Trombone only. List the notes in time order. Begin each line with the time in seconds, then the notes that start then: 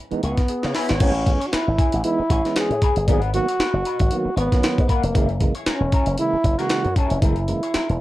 0.23 B3
0.75 B3
1.01 C#4
1.47 F#4
1.53 E4
2.05 E4
2.58 G#4
3.10 G#4
3.35 F#4
4.37 B3
4.89 A#3
5.67 C#4
6.19 E4
6.59 F#4
6.96 C#4
7.21 E4